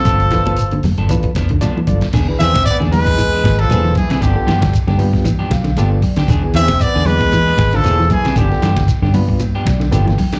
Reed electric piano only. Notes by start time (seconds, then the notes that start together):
0.33 D4 F4 A4 B4
1.10 D4 F4 A4 B4
1.61 D4 F4 A4 D5
1.87 D4 F4 A4 D5
2.28 D4 E4 G#4 B4
2.91 D4 E4 G#4 B4
3.70 D4 E4 G#4 B4
4.36 B3 D4 F4 A4
4.99 B3 D4 F4 G4
5.52 F5
5.78 B3 D4 F4 A4 D5
6.43 B3 D4 E4 G#4
7.07 B3 D4 E4 G#4
7.84 B3 D4 E4 G#4
8.51 B3 D4 F4 A4
9.14 B3 D4 F4 B4
9.66 D5
9.91 B3 D4 F4 A4 G5